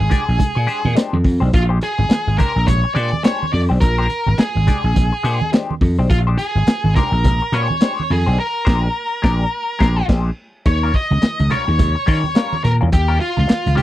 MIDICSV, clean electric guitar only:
0, 0, Header, 1, 3, 480
1, 0, Start_track
1, 0, Tempo, 569801
1, 1292, Time_signature, 4, 2, 24, 8
1, 11645, End_track
2, 0, Start_track
2, 0, Title_t, "Clean electric guitar"
2, 0, Program_c, 0, 27
2, 82, Note_on_c, 0, 56, 57
2, 85, Note_on_c, 0, 62, 52
2, 94, Note_on_c, 0, 67, 57
2, 99, Note_on_c, 0, 74, 65
2, 223, Note_off_c, 0, 74, 0
2, 227, Note_off_c, 0, 67, 0
2, 230, Note_off_c, 0, 56, 0
2, 232, Note_off_c, 0, 62, 0
2, 562, Note_on_c, 0, 56, 72
2, 566, Note_on_c, 0, 62, 83
2, 568, Note_on_c, 0, 67, 83
2, 578, Note_on_c, 0, 72, 86
2, 699, Note_off_c, 0, 72, 0
2, 702, Note_off_c, 0, 67, 0
2, 705, Note_off_c, 0, 62, 0
2, 738, Note_off_c, 0, 56, 0
2, 802, Note_on_c, 0, 56, 80
2, 811, Note_on_c, 0, 62, 85
2, 816, Note_on_c, 0, 67, 86
2, 820, Note_on_c, 0, 72, 90
2, 978, Note_off_c, 0, 56, 0
2, 982, Note_off_c, 0, 62, 0
2, 985, Note_off_c, 0, 67, 0
2, 987, Note_off_c, 0, 72, 0
2, 1182, Note_on_c, 0, 72, 64
2, 1187, Note_on_c, 0, 67, 53
2, 1194, Note_on_c, 0, 62, 54
2, 1196, Note_on_c, 0, 56, 51
2, 1272, Note_off_c, 0, 56, 0
2, 1276, Note_off_c, 0, 62, 0
2, 1280, Note_off_c, 0, 67, 0
2, 1285, Note_off_c, 0, 72, 0
2, 1424, Note_on_c, 0, 72, 75
2, 1433, Note_on_c, 0, 67, 70
2, 1435, Note_on_c, 0, 62, 61
2, 1443, Note_on_c, 0, 56, 64
2, 1513, Note_off_c, 0, 56, 0
2, 1513, Note_off_c, 0, 62, 0
2, 1518, Note_off_c, 0, 67, 0
2, 1522, Note_off_c, 0, 72, 0
2, 2006, Note_on_c, 0, 56, 57
2, 2012, Note_on_c, 0, 62, 57
2, 2015, Note_on_c, 0, 67, 64
2, 2022, Note_on_c, 0, 72, 61
2, 2135, Note_off_c, 0, 72, 0
2, 2143, Note_off_c, 0, 67, 0
2, 2145, Note_off_c, 0, 62, 0
2, 2154, Note_off_c, 0, 56, 0
2, 2483, Note_on_c, 0, 56, 81
2, 2488, Note_on_c, 0, 62, 86
2, 2496, Note_on_c, 0, 67, 86
2, 2498, Note_on_c, 0, 72, 93
2, 2629, Note_off_c, 0, 72, 0
2, 2636, Note_off_c, 0, 67, 0
2, 2638, Note_off_c, 0, 62, 0
2, 2660, Note_off_c, 0, 56, 0
2, 2723, Note_on_c, 0, 56, 84
2, 2731, Note_on_c, 0, 62, 89
2, 2737, Note_on_c, 0, 67, 99
2, 2741, Note_on_c, 0, 72, 105
2, 2900, Note_off_c, 0, 56, 0
2, 2904, Note_off_c, 0, 62, 0
2, 2907, Note_off_c, 0, 67, 0
2, 2909, Note_off_c, 0, 72, 0
2, 3107, Note_on_c, 0, 72, 50
2, 3113, Note_on_c, 0, 67, 61
2, 3124, Note_on_c, 0, 62, 52
2, 3125, Note_on_c, 0, 56, 47
2, 3196, Note_off_c, 0, 56, 0
2, 3202, Note_off_c, 0, 62, 0
2, 3204, Note_off_c, 0, 67, 0
2, 3210, Note_off_c, 0, 72, 0
2, 3356, Note_on_c, 0, 72, 84
2, 3358, Note_on_c, 0, 67, 84
2, 3365, Note_on_c, 0, 62, 66
2, 3368, Note_on_c, 0, 56, 60
2, 3436, Note_off_c, 0, 56, 0
2, 3438, Note_off_c, 0, 62, 0
2, 3442, Note_off_c, 0, 67, 0
2, 3447, Note_off_c, 0, 72, 0
2, 3934, Note_on_c, 0, 56, 53
2, 3939, Note_on_c, 0, 62, 59
2, 3945, Note_on_c, 0, 67, 59
2, 3950, Note_on_c, 0, 74, 56
2, 4072, Note_off_c, 0, 67, 0
2, 4075, Note_off_c, 0, 74, 0
2, 4080, Note_off_c, 0, 56, 0
2, 4080, Note_off_c, 0, 62, 0
2, 4409, Note_on_c, 0, 56, 78
2, 4416, Note_on_c, 0, 62, 83
2, 4425, Note_on_c, 0, 67, 95
2, 4429, Note_on_c, 0, 72, 93
2, 4551, Note_off_c, 0, 72, 0
2, 4558, Note_off_c, 0, 67, 0
2, 4566, Note_off_c, 0, 62, 0
2, 4585, Note_off_c, 0, 56, 0
2, 4653, Note_on_c, 0, 56, 76
2, 4662, Note_on_c, 0, 62, 86
2, 4666, Note_on_c, 0, 67, 98
2, 4672, Note_on_c, 0, 72, 84
2, 4827, Note_off_c, 0, 56, 0
2, 4831, Note_off_c, 0, 62, 0
2, 4833, Note_off_c, 0, 67, 0
2, 4836, Note_off_c, 0, 72, 0
2, 5043, Note_on_c, 0, 72, 67
2, 5048, Note_on_c, 0, 67, 62
2, 5053, Note_on_c, 0, 62, 52
2, 5059, Note_on_c, 0, 56, 49
2, 5130, Note_off_c, 0, 56, 0
2, 5134, Note_off_c, 0, 62, 0
2, 5136, Note_off_c, 0, 67, 0
2, 5139, Note_off_c, 0, 72, 0
2, 5281, Note_on_c, 0, 72, 69
2, 5289, Note_on_c, 0, 67, 69
2, 5294, Note_on_c, 0, 62, 63
2, 5298, Note_on_c, 0, 56, 67
2, 5375, Note_off_c, 0, 56, 0
2, 5381, Note_off_c, 0, 62, 0
2, 5384, Note_off_c, 0, 72, 0
2, 5385, Note_off_c, 0, 67, 0
2, 5866, Note_on_c, 0, 56, 62
2, 5876, Note_on_c, 0, 62, 67
2, 5881, Note_on_c, 0, 67, 66
2, 5882, Note_on_c, 0, 72, 69
2, 5999, Note_off_c, 0, 72, 0
2, 6002, Note_off_c, 0, 67, 0
2, 6007, Note_off_c, 0, 56, 0
2, 6008, Note_off_c, 0, 62, 0
2, 6339, Note_on_c, 0, 56, 72
2, 6349, Note_on_c, 0, 62, 82
2, 6351, Note_on_c, 0, 67, 81
2, 6359, Note_on_c, 0, 72, 87
2, 6478, Note_off_c, 0, 72, 0
2, 6486, Note_off_c, 0, 67, 0
2, 6491, Note_off_c, 0, 62, 0
2, 6523, Note_off_c, 0, 56, 0
2, 6581, Note_on_c, 0, 56, 78
2, 6589, Note_on_c, 0, 62, 84
2, 6594, Note_on_c, 0, 67, 86
2, 6599, Note_on_c, 0, 72, 100
2, 6751, Note_off_c, 0, 56, 0
2, 6755, Note_off_c, 0, 62, 0
2, 6758, Note_off_c, 0, 67, 0
2, 6760, Note_off_c, 0, 72, 0
2, 6961, Note_on_c, 0, 72, 63
2, 6967, Note_on_c, 0, 67, 53
2, 6971, Note_on_c, 0, 62, 63
2, 6975, Note_on_c, 0, 56, 52
2, 7059, Note_off_c, 0, 72, 0
2, 7062, Note_off_c, 0, 67, 0
2, 7063, Note_off_c, 0, 62, 0
2, 7066, Note_off_c, 0, 56, 0
2, 7286, Note_on_c, 0, 72, 83
2, 7296, Note_on_c, 0, 67, 88
2, 7297, Note_on_c, 0, 62, 90
2, 7304, Note_on_c, 0, 56, 96
2, 7463, Note_off_c, 0, 72, 0
2, 7469, Note_off_c, 0, 67, 0
2, 7470, Note_off_c, 0, 62, 0
2, 7474, Note_off_c, 0, 56, 0
2, 7768, Note_on_c, 0, 56, 92
2, 7775, Note_on_c, 0, 62, 95
2, 7781, Note_on_c, 0, 67, 84
2, 7786, Note_on_c, 0, 74, 88
2, 7944, Note_off_c, 0, 56, 0
2, 7948, Note_off_c, 0, 62, 0
2, 7952, Note_off_c, 0, 67, 0
2, 7955, Note_off_c, 0, 74, 0
2, 8246, Note_on_c, 0, 56, 93
2, 8254, Note_on_c, 0, 62, 92
2, 8259, Note_on_c, 0, 67, 102
2, 8263, Note_on_c, 0, 72, 103
2, 8423, Note_off_c, 0, 56, 0
2, 8427, Note_off_c, 0, 62, 0
2, 8430, Note_off_c, 0, 67, 0
2, 8433, Note_off_c, 0, 72, 0
2, 8493, Note_on_c, 0, 56, 97
2, 8499, Note_on_c, 0, 62, 95
2, 8503, Note_on_c, 0, 67, 96
2, 8510, Note_on_c, 0, 72, 94
2, 8667, Note_off_c, 0, 56, 0
2, 8670, Note_off_c, 0, 62, 0
2, 8672, Note_off_c, 0, 67, 0
2, 8677, Note_off_c, 0, 72, 0
2, 9125, Note_on_c, 0, 70, 66
2, 9132, Note_on_c, 0, 65, 62
2, 9138, Note_on_c, 0, 61, 60
2, 9142, Note_on_c, 0, 55, 64
2, 9210, Note_off_c, 0, 55, 0
2, 9211, Note_off_c, 0, 61, 0
2, 9219, Note_off_c, 0, 65, 0
2, 9224, Note_off_c, 0, 70, 0
2, 9687, Note_on_c, 0, 55, 55
2, 9692, Note_on_c, 0, 61, 56
2, 9697, Note_on_c, 0, 65, 64
2, 9701, Note_on_c, 0, 70, 70
2, 9819, Note_off_c, 0, 70, 0
2, 9829, Note_off_c, 0, 65, 0
2, 9835, Note_off_c, 0, 55, 0
2, 9838, Note_off_c, 0, 61, 0
2, 10161, Note_on_c, 0, 55, 75
2, 10167, Note_on_c, 0, 61, 77
2, 10174, Note_on_c, 0, 65, 85
2, 10179, Note_on_c, 0, 70, 81
2, 10301, Note_off_c, 0, 70, 0
2, 10303, Note_off_c, 0, 65, 0
2, 10313, Note_off_c, 0, 61, 0
2, 10338, Note_off_c, 0, 55, 0
2, 10406, Note_on_c, 0, 55, 84
2, 10411, Note_on_c, 0, 61, 83
2, 10415, Note_on_c, 0, 65, 84
2, 10422, Note_on_c, 0, 70, 84
2, 10581, Note_off_c, 0, 55, 0
2, 10583, Note_off_c, 0, 61, 0
2, 10585, Note_off_c, 0, 65, 0
2, 10588, Note_off_c, 0, 70, 0
2, 10789, Note_on_c, 0, 65, 61
2, 10789, Note_on_c, 0, 70, 63
2, 10797, Note_on_c, 0, 61, 57
2, 10801, Note_on_c, 0, 55, 53
2, 10868, Note_off_c, 0, 55, 0
2, 10875, Note_off_c, 0, 61, 0
2, 10876, Note_off_c, 0, 65, 0
2, 10880, Note_off_c, 0, 70, 0
2, 11021, Note_on_c, 0, 70, 78
2, 11025, Note_on_c, 0, 65, 77
2, 11031, Note_on_c, 0, 61, 69
2, 11035, Note_on_c, 0, 55, 65
2, 11103, Note_off_c, 0, 55, 0
2, 11108, Note_off_c, 0, 65, 0
2, 11110, Note_off_c, 0, 61, 0
2, 11115, Note_off_c, 0, 70, 0
2, 11587, Note_on_c, 0, 55, 63
2, 11593, Note_on_c, 0, 61, 68
2, 11599, Note_on_c, 0, 65, 73
2, 11605, Note_on_c, 0, 72, 76
2, 11645, Note_off_c, 0, 55, 0
2, 11645, Note_off_c, 0, 61, 0
2, 11645, Note_off_c, 0, 65, 0
2, 11645, Note_off_c, 0, 72, 0
2, 11645, End_track
3, 0, Start_track
3, 0, Title_t, "Muted clean electric guitar strokes"
3, 226, Note_on_c, 9, 29, 52
3, 310, Note_off_c, 9, 29, 0
3, 326, Note_on_c, 9, 29, 37
3, 411, Note_off_c, 9, 29, 0
3, 466, Note_on_c, 9, 29, 49
3, 550, Note_off_c, 9, 29, 0
3, 709, Note_on_c, 9, 29, 48
3, 793, Note_off_c, 9, 29, 0
3, 1045, Note_on_c, 9, 29, 37
3, 1129, Note_off_c, 9, 29, 0
3, 1669, Note_on_c, 9, 29, 35
3, 1753, Note_off_c, 9, 29, 0
3, 1762, Note_on_c, 9, 29, 44
3, 1846, Note_off_c, 9, 29, 0
3, 2145, Note_on_c, 9, 29, 52
3, 2229, Note_off_c, 9, 29, 0
3, 2242, Note_on_c, 9, 29, 46
3, 2326, Note_off_c, 9, 29, 0
3, 2390, Note_on_c, 9, 29, 47
3, 2474, Note_off_c, 9, 29, 0
3, 2639, Note_on_c, 9, 29, 37
3, 2723, Note_off_c, 9, 29, 0
3, 2968, Note_on_c, 9, 29, 48
3, 3053, Note_off_c, 9, 29, 0
3, 3206, Note_on_c, 9, 29, 49
3, 3290, Note_off_c, 9, 29, 0
3, 3596, Note_on_c, 9, 29, 36
3, 3680, Note_off_c, 9, 29, 0
3, 3696, Note_on_c, 9, 29, 31
3, 3780, Note_off_c, 9, 29, 0
3, 4078, Note_on_c, 9, 29, 50
3, 4162, Note_off_c, 9, 29, 0
3, 4180, Note_on_c, 9, 29, 40
3, 4264, Note_off_c, 9, 29, 0
3, 4318, Note_on_c, 9, 29, 48
3, 4402, Note_off_c, 9, 29, 0
3, 4562, Note_on_c, 9, 29, 51
3, 4646, Note_off_c, 9, 29, 0
3, 4897, Note_on_c, 9, 29, 42
3, 4981, Note_off_c, 9, 29, 0
3, 5146, Note_on_c, 9, 29, 44
3, 5230, Note_off_c, 9, 29, 0
3, 5538, Note_on_c, 9, 29, 39
3, 5622, Note_off_c, 9, 29, 0
3, 5623, Note_on_c, 9, 29, 47
3, 5708, Note_off_c, 9, 29, 0
3, 6009, Note_on_c, 9, 29, 54
3, 6093, Note_off_c, 9, 29, 0
3, 6102, Note_on_c, 9, 29, 46
3, 6187, Note_off_c, 9, 29, 0
3, 6252, Note_on_c, 9, 29, 44
3, 6336, Note_off_c, 9, 29, 0
3, 6488, Note_on_c, 9, 29, 42
3, 6572, Note_off_c, 9, 29, 0
3, 6823, Note_on_c, 9, 29, 32
3, 6907, Note_off_c, 9, 29, 0
3, 8976, Note_on_c, 9, 29, 35
3, 9061, Note_off_c, 9, 29, 0
3, 9362, Note_on_c, 9, 29, 39
3, 9446, Note_off_c, 9, 29, 0
3, 9450, Note_on_c, 9, 29, 49
3, 9535, Note_off_c, 9, 29, 0
3, 9829, Note_on_c, 9, 29, 57
3, 9914, Note_off_c, 9, 29, 0
3, 9929, Note_on_c, 9, 29, 40
3, 10013, Note_off_c, 9, 29, 0
3, 10069, Note_on_c, 9, 29, 42
3, 10153, Note_off_c, 9, 29, 0
3, 10311, Note_on_c, 9, 29, 41
3, 10395, Note_off_c, 9, 29, 0
3, 10650, Note_on_c, 9, 29, 47
3, 10735, Note_off_c, 9, 29, 0
3, 11261, Note_on_c, 9, 29, 46
3, 11345, Note_off_c, 9, 29, 0
3, 11349, Note_on_c, 9, 29, 37
3, 11434, Note_off_c, 9, 29, 0
3, 11645, End_track
0, 0, End_of_file